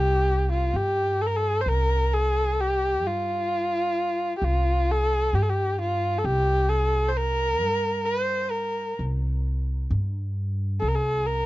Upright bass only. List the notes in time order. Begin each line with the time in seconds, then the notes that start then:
Already playing: C2
0.74 G2
1.66 C2
3.03 G2
4.42 C2
5.33 G2
6.24 C2
7.62 G2
8.99 C2
9.90 G2
10.82 C2